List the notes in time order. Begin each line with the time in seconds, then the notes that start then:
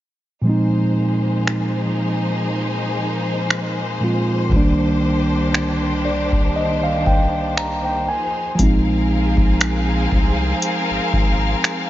0.41 A#2 F3 G#3 A#3 D#4 G#4 C5
0.47 C4 D#4
1.47 finger snap
3.50 finger snap
4.00 A#2 F3 G#3 C4 F4
4.49 C2 D#3 G3 D4 G4, kick
4.54 A#3 D4
5.54 finger snap
6.05 D5
6.32 kick
6.56 D#5
6.83 F5
7.06 G5, kick
7.57 A#5, finger snap
7.85 G5
8.08 F3 A#3 D#4 G#4 G#5
8.55 F3 G#3 C4 G#4 A#4 F5, kick, closed hi-hat
8.59 A#1 C4 D#4
9.37 kick
9.61 finger snap, closed hi-hat
10.12 C2, kick
10.62 closed hi-hat
10.90 G#1
11.13 G#1, kick
11.64 finger snap, closed hi-hat